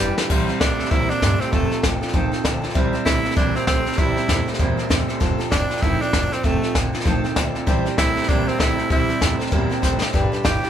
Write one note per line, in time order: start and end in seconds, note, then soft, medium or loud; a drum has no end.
0.00 0.13 F1 medium
0.00 0.15 G2 medium
0.00 0.16 E3 medium
0.00 0.15 G3 loud
0.00 0.17 G3 medium
0.00 0.18 D4 medium
0.00 0.17 G4 medium
0.00 0.16 B4 medium
0.00 0.10 D5 loud
0.00 0.11 G5 loud
0.17 0.28 G2 medium
0.17 0.28 E3 medium
0.17 0.31 D4 soft
0.17 0.30 G4 medium
0.17 0.25 B4 loud
0.17 0.29 B4 medium
0.17 0.25 D5 medium
0.17 0.25 G5 loud
0.17 muted upright bass stroke medium
0.17 snare medium
0.30 0.44 C2 medium
0.30 0.58 C3 medium
0.30 0.48 C3 medium
0.30 0.49 E3 medium
0.30 0.58 G3 loud
0.30 0.49 G3 loud
0.30 0.48 C4 loud
0.30 0.48 E4 medium
0.30 0.46 C5 loud
0.30 kick loud
0.30 snare soft
0.30 crash loud
0.48 0.58 G3 medium
0.48 0.60 C4 medium
0.48 0.60 E4 medium
0.48 0.60 C5 medium
0.48 muted upright bass stroke medium
0.48 snare soft
0.60 0.74 C2 medium
0.60 0.77 C3 medium
0.60 0.79 G3 medium
0.60 0.77 A3 medium
0.60 0.79 C4 medium
0.60 0.93 D4 medium
0.60 0.78 E4 medium
0.60 kick medium
0.60 snare loud
0.60 hi-hat pedal medium
0.78 0.89 C3 medium
0.78 0.90 G3 soft
0.78 0.90 A3 medium
0.78 0.90 C4 soft
0.78 0.91 E4 soft
0.78 0.91 C5 medium
0.78 muted upright bass stroke medium
0.78 snare soft
0.85 snare soft
0.91 1.05 C2 loud
0.91 1.19 C3 medium
0.91 1.10 C3 medium
0.91 1.10 E3 medium
0.91 1.10 G3 medium
0.91 1.19 A#3 medium
0.91 1.10 C4 medium
0.91 1.11 E4 loud
0.91 1.09 E4 medium
0.91 1.09 C5 medium
0.91 kick loud
0.91 snare soft
1.10 1.20 G3 soft
1.10 1.21 C4 medium
1.10 1.41 D4 loud
1.10 1.22 E4 medium
1.10 1.22 C5 medium
1.10 muted upright bass stroke medium
1.10 snare soft
1.21 1.36 G2 loud
1.21 1.38 C3 medium
1.21 1.40 G3 medium
1.21 1.38 A3 medium
1.21 1.40 C4 medium
1.21 1.39 E4 medium
1.21 1.39 C5 medium
1.21 kick medium
1.21 snare loud
1.21 hi-hat pedal medium
1.40 1.51 C3 medium
1.40 1.52 G3 soft
1.40 1.51 A3 medium
1.40 1.54 C4 medium
1.40 1.52 C4 soft
1.40 1.53 E4 medium
1.40 1.52 C5 medium
1.40 muted upright bass stroke medium
1.40 snare soft
1.52 1.67 F1 loud
1.52 1.81 F2 medium
1.52 1.81 C3 loud
1.52 1.71 F3 medium
1.52 1.83 A3 medium
1.52 1.71 A3 medium
1.52 1.71 C4 medium
1.52 1.71 F4 medium
1.52 1.69 A4 medium
1.52 kick loud
1.52 snare soft
1.71 1.82 C4 soft
1.71 1.83 F4 medium
1.71 1.83 A4 medium
1.71 muted upright bass stroke medium
1.71 snare soft
1.82 1.97 A1 medium
1.82 2.00 F2 medium
1.82 2.00 D3 medium
1.82 2.01 A3 medium
1.82 2.02 C4 medium
1.82 2.01 F4 medium
1.82 2.00 A4 medium
1.82 kick medium
1.82 snare loud
1.82 hi-hat pedal medium
2.01 2.13 F2 medium
2.01 2.13 D3 medium
2.01 2.13 C4 medium
2.01 2.13 F4 medium
2.01 2.13 A4 medium
2.01 muted upright bass stroke medium
2.01 snare soft
2.08 snare soft
2.13 2.28 A1 medium
2.13 2.42 F2 medium
2.13 2.42 D#3 medium
2.13 2.32 F3 medium
2.13 2.32 A3 medium
2.13 2.33 C4 medium
2.13 2.32 F4 medium
2.13 2.30 A4 loud
2.13 kick loud
2.13 snare soft
2.32 2.44 C4 medium
2.32 2.44 F4 medium
2.32 2.44 A4 medium
2.32 muted upright bass stroke medium
2.32 snare soft
2.44 2.59 D2 medium
2.44 2.62 F2 medium
2.44 2.62 D3 loud
2.44 2.63 A3 medium
2.44 2.63 C4 medium
2.44 2.62 F4 medium
2.44 2.60 A4 medium
2.44 kick medium
2.44 snare loud
2.44 hi-hat pedal medium
2.62 2.74 F2 medium
2.62 2.74 D3 medium
2.62 2.74 C4 medium
2.62 2.75 F4 soft
2.62 2.74 A4 medium
2.62 muted upright bass stroke medium
2.62 snare soft
2.70 snare soft
2.74 2.89 C2 medium
2.74 2.94 C3 loud
2.74 3.03 C3 medium
2.74 2.94 E3 medium
2.74 2.94 G3 loud
2.74 3.04 G3 loud
2.74 2.93 C4 loud
2.74 2.92 E4 loud
2.74 2.92 C5 loud
2.74 kick loud
2.74 snare soft
2.93 3.04 G3 medium
2.93 3.05 C4 medium
2.93 3.06 E4 medium
2.93 3.05 C5 medium
2.93 muted upright bass stroke medium
2.93 snare soft
3.05 3.20 C2 medium
3.05 3.23 C3 medium
3.05 3.24 G3 medium
3.05 3.23 A3 medium
3.05 3.23 C4 medium
3.05 3.34 E4 loud
3.05 3.23 E4 medium
3.05 3.22 C5 medium
3.05 kick medium
3.05 snare loud
3.05 hi-hat pedal medium
3.23 3.35 C3 medium
3.23 3.35 G3 soft
3.23 3.36 A3 medium
3.23 3.36 C4 soft
3.23 3.36 E4 soft
3.23 3.36 C5 medium
3.23 muted upright bass stroke medium
3.23 snare soft
3.31 snare soft
3.36 3.51 C2 medium
3.36 3.55 C3 medium
3.36 3.65 C3 medium
3.36 3.55 E3 medium
3.36 3.55 G3 medium
3.36 3.65 A#3 medium
3.36 3.55 C4 medium
3.36 3.57 D4 medium
3.36 3.54 E4 medium
3.36 3.53 C5 medium
3.36 kick loud
3.36 snare soft
3.54 3.65 G3 soft
3.54 3.66 C4 loud
3.54 3.66 C4 medium
3.54 3.67 E4 medium
3.54 3.67 C5 medium
3.54 muted upright bass stroke medium
3.54 snare soft
3.67 3.81 C2 medium
3.67 3.84 C3 medium
3.67 3.86 G3 medium
3.67 3.84 A3 medium
3.67 4.00 C4 medium
3.67 3.86 C4 medium
3.67 3.85 E4 medium
3.67 3.84 C5 medium
3.67 kick medium
3.67 snare loud
3.67 hi-hat pedal medium
3.85 3.97 C3 medium
3.85 3.97 G3 soft
3.85 3.97 A3 medium
3.85 3.98 C4 soft
3.85 3.98 E4 medium
3.85 3.98 C5 medium
3.85 muted upright bass stroke medium
3.85 snare soft
3.92 snare soft
3.98 4.12 C2 loud
3.98 4.17 C3 medium
3.98 4.26 C3 medium
3.98 4.17 E3 loud
3.98 4.17 G3 medium
3.98 4.27 G3 loud
3.98 4.17 C4 medium
3.98 4.48 E4 loud
3.98 4.16 E4 medium
3.98 4.15 C5 medium
3.98 kick loud
3.98 snare soft
4.16 4.27 G3 medium
4.16 4.28 C4 medium
4.16 4.29 E4 medium
4.16 4.28 C5 medium
4.16 muted upright bass stroke medium
4.16 snare soft
4.28 4.43 E2 medium
4.28 4.45 C3 medium
4.28 4.47 G3 medium
4.28 4.46 A3 medium
4.28 4.46 C4 medium
4.28 4.46 E4 medium
4.28 4.45 C5 medium
4.28 kick medium
4.28 snare loud
4.28 hi-hat pedal medium
4.46 4.58 C3 medium
4.46 4.59 G3 soft
4.46 4.58 A3 medium
4.46 4.59 C4 medium
4.46 4.59 E4 medium
4.46 4.59 C5 medium
4.46 muted upright bass stroke medium
4.46 snare soft
4.54 snare soft
4.59 4.73 E2 loud
4.59 4.78 C3 medium
4.59 4.88 C3 medium
4.59 4.78 E3 medium
4.59 4.78 G3 loud
4.59 4.88 A#3 medium
4.59 4.78 C4 loud
4.59 4.77 E4 loud
4.59 4.76 C5 medium
4.59 kick loud
4.59 snare soft
4.77 4.88 G3 medium
4.77 4.88 C4 medium
4.77 4.89 E4 medium
4.77 4.90 C5 medium
4.77 muted upright bass stroke medium
4.77 snare soft
4.89 5.04 E2 medium
4.89 5.07 C3 medium
4.89 5.08 G3 medium
4.89 5.07 A3 medium
4.89 5.09 C4 medium
4.89 5.08 E4 medium
4.89 5.07 C5 medium
4.89 kick medium
4.89 snare loud
4.89 hi-hat pedal medium
5.08 5.20 C3 medium
5.08 5.20 G3 soft
5.08 5.20 A3 medium
5.08 5.20 C4 soft
5.08 5.21 E4 medium
5.08 5.20 C5 medium
5.08 muted upright bass stroke medium
5.08 snare soft
5.20 5.35 F1 medium
5.20 5.49 F2 medium
5.20 5.49 C3 loud
5.20 5.39 F3 loud
5.20 5.39 A3 medium
5.20 5.39 C4 loud
5.20 5.38 F4 loud
5.20 5.37 A4 loud
5.20 kick loud
5.20 snare soft
5.38 5.50 C4 medium
5.38 5.51 F4 medium
5.38 5.51 A4 medium
5.38 muted upright bass stroke medium
5.38 snare soft
5.50 5.66 F1 medium
5.50 5.68 F2 medium
5.50 5.68 D3 medium
5.50 5.70 A3 medium
5.50 5.70 C4 medium
5.50 5.84 D4 medium
5.50 5.70 F4 medium
5.50 5.68 A4 medium
5.50 kick medium
5.50 snare loud
5.50 hi-hat pedal medium
5.70 5.81 F2 medium
5.70 5.81 D3 medium
5.70 5.82 C4 soft
5.70 5.83 F4 soft
5.70 5.82 A4 medium
5.70 muted upright bass stroke medium
5.70 snare soft
5.77 snare soft
5.82 5.96 F1 medium
5.82 6.11 F2 medium
5.82 6.11 D#3 medium
5.82 6.01 F3 medium
5.82 6.01 A3 medium
5.82 6.01 C4 medium
5.82 6.03 E4 loud
5.82 6.00 F4 medium
5.82 5.99 A4 loud
5.82 kick loud
5.82 snare soft
6.00 6.12 C4 medium
6.00 6.34 D4 loud
6.00 6.13 F4 medium
6.00 6.13 A4 medium
6.00 muted upright bass stroke medium
6.00 snare soft
6.13 6.27 F1 medium
6.13 6.30 F2 medium
6.13 6.30 D3 medium
6.13 6.32 A3 medium
6.13 6.32 C4 medium
6.13 6.32 F4 medium
6.13 6.30 A4 medium
6.13 kick loud
6.13 snare loud
6.13 hi-hat pedal medium
6.31 6.42 F2 medium
6.31 6.43 D3 medium
6.31 6.46 C4 medium
6.31 6.43 C4 soft
6.31 6.44 F4 soft
6.31 6.44 A4 medium
6.31 muted upright bass stroke medium
6.31 snare soft
6.43 6.58 F1 medium
6.43 6.72 F2 medium
6.43 6.72 C3 medium
6.43 6.62 F3 medium
6.43 6.63 A3 medium
6.43 6.75 A3 medium
6.43 6.63 C4 medium
6.43 6.63 F4 medium
6.43 6.61 A4 loud
6.43 kick loud
6.43 snare soft
6.62 6.74 C4 soft
6.62 6.74 F4 medium
6.62 6.74 A4 medium
6.62 muted upright bass stroke medium
6.62 snare soft
6.74 6.89 A1 medium
6.74 6.91 F2 medium
6.74 6.92 D3 loud
6.74 6.93 A3 medium
6.74 6.93 C4 medium
6.74 6.93 F4 medium
6.74 6.92 A4 medium
6.74 kick medium
6.74 snare loud
6.74 hi-hat pedal medium
6.93 7.04 F2 medium
6.93 7.04 D3 medium
6.93 7.05 C4 medium
6.93 7.05 F4 medium
6.93 7.05 A4 medium
6.93 muted upright bass stroke medium
6.93 snare soft
7.00 snare soft
7.05 7.19 A1 medium
7.05 7.34 F2 medium
7.05 7.34 D#3 loud
7.05 7.24 F3 medium
7.05 7.24 A3 medium
7.05 7.25 C4 medium
7.05 7.24 F4 loud
7.05 7.22 A4 loud
7.05 kick loud
7.05 snare soft
7.24 7.35 C4 medium
7.24 7.36 F4 medium
7.24 7.36 A4 medium
7.24 muted upright bass stroke medium
7.24 snare soft
7.36 7.50 D2 loud
7.36 7.53 F2 medium
7.36 7.53 D3 medium
7.36 7.55 A3 medium
7.36 7.55 C4 medium
7.36 7.55 F4 medium
7.36 7.54 A4 medium
7.36 kick medium
7.36 snare loud
7.36 hi-hat pedal medium
7.55 7.66 F2 medium
7.55 7.66 D3 medium
7.55 7.66 C4 soft
7.55 7.67 F4 medium
7.55 7.67 A4 medium
7.55 muted upright bass stroke medium
7.55 snare soft
7.66 7.81 C2 loud
7.66 7.95 C3 medium
7.66 7.86 C3 medium
7.66 7.86 E3 loud
7.66 7.95 G3 loud
7.66 7.86 G3 loud
7.66 7.86 C4 loud
7.66 7.85 E4 loud
7.66 7.78 C5 loud
7.66 7.84 C5 loud
7.66 7.78 E5 medium
7.66 7.79 G5 loud
7.66 kick loud
7.66 snare soft
7.85 7.96 G3 medium
7.85 7.97 C4 medium
7.85 7.98 E4 medium
7.85 7.92 C5 medium
7.85 7.98 C5 medium
7.85 7.93 E5 medium
7.85 7.93 G5 medium
7.85 muted upright bass stroke medium
7.85 snare soft
7.97 8.12 C2 medium
7.97 8.14 C3 medium
7.97 8.16 G3 medium
7.97 8.15 A3 loud
7.97 8.17 C4 medium
7.97 8.30 E4 loud
7.97 8.16 E4 medium
7.97 8.09 C5 medium
7.97 8.15 C5 medium
7.97 kick medium
7.97 snare loud
7.97 hi-hat pedal medium
8.16 8.27 C3 medium
8.16 8.28 G3 soft
8.16 8.27 A3 medium
8.16 8.28 C4 soft
8.16 8.28 E4 medium
8.16 8.23 C5 medium
8.16 8.28 C5 medium
8.16 8.24 E5 medium
8.16 8.24 G5 medium
8.16 muted upright bass stroke medium
8.16 snare soft
8.23 snare soft
8.28 8.43 C2 medium
8.28 8.57 C3 medium
8.28 8.47 C3 medium
8.28 8.47 E3 medium
8.28 8.48 G3 loud
8.28 8.57 A#3 medium
8.28 8.47 C4 medium
8.28 8.49 D4 loud
8.28 8.46 E4 medium
8.28 8.39 C5 medium
8.28 8.45 C5 medium
8.28 8.40 E5 medium
8.28 8.40 G5 loud
8.28 kick loud
8.28 snare soft
8.47 8.57 G3 soft
8.47 8.61 C4 loud
8.47 8.58 C4 medium
8.47 8.59 E4 medium
8.47 8.54 C5 loud
8.47 8.59 C5 medium
8.47 8.55 E5 medium
8.47 8.55 G5 medium
8.47 muted upright bass stroke medium
8.47 snare soft
8.58 8.74 C2 loud
8.58 8.76 C3 medium
8.58 8.78 G3 medium
8.58 8.76 A3 loud
8.58 8.78 C4 medium
8.58 8.90 E4 loud
8.58 8.78 E4 medium
8.58 8.70 C5 loud
8.58 8.77 C5 medium
8.58 8.71 E5 medium
8.58 8.71 G5 loud
8.58 kick medium
8.58 snare loud
8.58 hi-hat pedal medium
8.77 8.89 C3 medium
8.77 8.89 G3 soft
8.77 8.89 A3 medium
8.77 8.90 C4 soft
8.77 8.90 E4 medium
8.77 8.85 C5 medium
8.77 8.90 C5 medium
8.77 8.85 E5 medium
8.77 8.86 G5 medium
8.77 muted upright bass stroke medium
8.77 snare soft
8.89 9.04 C2 medium
8.89 9.19 C3 medium
8.89 9.09 C3 medium
8.89 9.09 E3 medium
8.89 9.19 G3 medium
8.89 9.09 G3 medium
8.89 9.09 C4 medium
8.89 9.37 E4 loud
8.89 9.08 E4 medium
8.89 9.01 C5 medium
8.89 9.07 C5 medium
8.89 9.02 E5 medium
8.89 9.02 G5 loud
8.89 kick loud
8.89 snare soft
9.08 9.19 G3 medium
9.08 9.20 C4 medium
9.08 9.21 E4 medium
9.08 9.16 C5 medium
9.08 9.21 C5 medium
9.08 9.16 E5 medium
9.08 9.17 G5 medium
9.08 muted upright bass stroke medium
9.08 snare soft
9.20 9.35 E2 medium
9.20 9.38 C3 medium
9.20 9.39 G3 medium
9.20 9.38 A3 medium
9.20 9.39 C4 medium
9.20 9.38 E4 medium
9.20 9.32 C5 medium
9.20 9.38 C5 medium
9.20 9.33 G5 medium
9.20 kick medium
9.20 snare loud
9.20 hi-hat pedal medium
9.39 9.50 C3 medium
9.39 9.51 G3 medium
9.39 9.51 A3 medium
9.39 9.51 C4 medium
9.39 9.51 E4 medium
9.39 9.51 C5 medium
9.39 9.47 C5 medium
9.39 9.47 E5 medium
9.39 9.48 G5 loud
9.39 muted upright bass stroke medium
9.39 snare soft
9.46 snare soft
9.51 9.66 E2 loud
9.51 9.70 C3 medium
9.51 9.80 C3 medium
9.51 9.71 E3 medium
9.51 9.71 G3 loud
9.51 9.81 A#3 loud
9.51 9.70 C4 loud
9.51 9.69 E4 loud
9.51 9.63 C5 medium
9.51 9.68 C5 loud
9.51 9.63 E5 medium
9.51 9.64 G5 loud
9.51 kick loud
9.51 snare soft
9.69 9.81 G3 medium
9.69 9.82 C4 medium
9.69 9.83 E4 medium
9.69 9.82 C5 medium
9.69 9.77 C5 loud
9.69 9.78 E5 medium
9.69 9.78 G5 loud
9.69 muted upright bass stroke medium
9.69 snare soft
9.82 9.97 A1 medium
9.82 10.00 C3 medium
9.82 10.01 G3 medium
9.82 10.00 A3 medium
9.82 10.01 C4 medium
9.82 10.01 E4 medium
9.82 9.94 C5 loud
9.82 9.99 C5 medium
9.82 9.94 E5 loud
9.82 9.95 G5 loud
9.82 kick loud
9.82 snare medium
9.82 hi-hat pedal medium
10.01 10.13 C3 medium
10.01 10.12 G3 soft
10.01 10.13 A3 medium
10.01 10.13 C4 soft
10.01 10.14 E4 medium
10.01 10.13 C5 medium
10.01 10.09 C5 medium
10.01 10.09 E5 medium
10.01 10.10 G5 medium
10.01 muted upright bass stroke medium
10.01 snare loud
10.13 10.28 G1 loud
10.13 10.42 G2 medium
10.13 10.43 D3 medium
10.13 10.32 G3 loud
10.13 10.33 D4 medium
10.13 10.32 G4 medium
10.13 10.25 B4 loud
10.13 10.31 B4 loud
10.13 10.25 D5 loud
10.13 10.26 G5 loud
10.13 kick loud
10.13 snare soft
10.32 10.43 D4 medium
10.32 10.44 G4 medium
10.32 10.39 B4 medium
10.32 10.44 B4 medium
10.32 10.40 D5 medium
10.32 10.40 G5 medium
10.32 muted upright bass stroke medium
10.32 snare soft
10.43 10.59 G1 medium
10.43 10.61 G2 medium
10.43 10.62 E3 medium
10.43 10.63 G3 medium
10.43 10.63 D4 medium
10.43 10.70 G4 medium
10.43 10.61 B4 medium
10.43 10.56 G5 medium
10.43 kick medium
10.43 snare loud
10.43 hi-hat pedal medium
10.62 10.70 G2 medium
10.62 10.70 E3 medium
10.62 10.70 D4 soft
10.62 10.70 G4 soft
10.62 10.70 B4 medium
10.62 10.70 D5 medium
10.62 10.70 G5 medium
10.62 muted upright bass stroke medium
10.62 snare soft